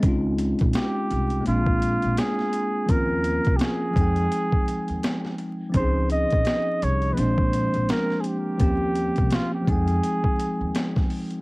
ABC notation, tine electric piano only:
X:1
M:4/4
L:1/8
Q:"Swing 16ths" 1/4=84
K:Dblyd
V:1 name="Tine electric piano"
[A,CDEF]4 [A,B,C=DF]4 | [F,B,CDF]3 [F,A,CEg]4- [F,A,CEg] | [F,CDEA]4 [F,A,B,C=D]4 | [F,B,CDG]3 [F,A,CEg]4- [F,A,CEg] |]